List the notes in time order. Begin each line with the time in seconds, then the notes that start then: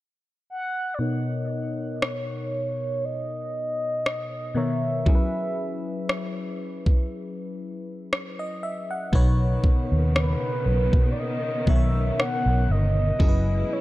0.50 F#5
0.94 D5
0.99 B2 B3 D#4 A#4 C#5 D#5
2.02 C#5, cross-stick
3.05 D#5
4.06 cross-stick
4.54 B2 D#3 B3 A#4 C#5 E5
5.06 F#3 C#4 E4 G#4 A#4, kick
5.15 B4
6.09 cross-stick
6.86 kick
8.13 cross-stick
8.39 D#5
8.63 E5
8.91 F#5
9.12 B1 B2 C#3 D#3 B3 D#4 B4 C#5, kick
9.64 kick
9.92 D#2
10.16 B4, cross-stick
10.66 B1
10.93 B2, kick
11.12 D5
11.19 D#5
11.66 B1 B2 D#3 B3 A#4 C#5 E5, kick
11.76 C#5
12.20 F#5, cross-stick
12.46 B1
12.69 G1 D#5
13.19 F#1 B2 F#3 G#3 C#4 E4 G#4 A#4, kick
13.28 B4
13.73 C#5